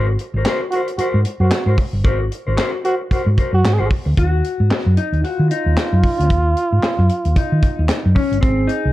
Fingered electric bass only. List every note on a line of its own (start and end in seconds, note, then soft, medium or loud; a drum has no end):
0.00 0.15 G#1 medium
0.34 0.43 G#1 medium
0.98 muted fingered electric bass stroke soft
1.14 1.23 G#2 medium
1.40 1.50 F#2 medium
1.66 1.76 G#2 loud
1.93 2.04 G1 medium
2.04 2.28 G#1 loud
2.47 2.57 G#1 medium
3.11 muted fingered electric bass stroke soft
3.26 3.36 G#2 medium
3.53 3.62 F#2 medium
3.64 3.78 G#2 medium
3.80 3.89 G#1 medium
4.06 4.16 D2 medium
4.18 4.41 D#2 loud
4.60 4.69 G#2 medium
4.71 muted fingered electric bass stroke soft
4.86 4.96 F#2 medium
5.13 5.22 D#2 medium
5.23 muted fingered electric bass stroke soft
5.39 5.49 D#3 medium
5.66 5.75 D#2 medium
5.77 muted fingered electric bass stroke soft
5.93 6.02 F#2 loud
6.20 6.29 D2 medium
6.30 6.53 D#2 loud
6.72 6.82 G#2 medium
6.83 muted fingered electric bass stroke soft
6.99 7.08 F#2 medium
7.25 7.35 D#2 medium
7.36 muted fingered electric bass stroke soft
7.52 7.61 D#3 medium
7.79 7.88 D#2 medium
7.90 muted fingered electric bass stroke soft
8.06 8.15 F#2 loud
8.31 8.41 G1 medium
8.43 8.66 G#1 loud
8.85 8.93 C2 medium